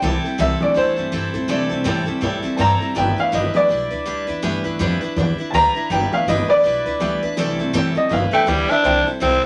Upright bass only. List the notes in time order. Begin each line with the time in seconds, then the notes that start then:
0.02 C2
0.24 muted upright bass stroke
0.39 C2
0.76 E2
0.98 G2
1.13 G2
1.34 A2
1.49 C3
1.85 A2
2.07 muted upright bass stroke
2.22 A2
2.45 muted upright bass stroke
2.59 G2
2.96 G1
3.33 G1
3.55 muted upright bass stroke
3.69 B1
3.92 D2
4.06 D2
4.28 E2
4.43 G2
4.65 G2
4.80 F2
5.01 muted upright bass stroke
5.16 E2
5.38 muted upright bass stroke
5.53 D2
5.75 muted upright bass stroke
5.90 G1
6.12 muted upright bass stroke
6.26 G1
6.49 muted upright bass stroke
6.64 B1
6.85 D2
7.01 D2
7.22 E2
7.37 C2
7.59 C3
7.74 A2
7.96 muted upright bass stroke
8.11 G1
8.48 D2
8.85 C2
9.21 C2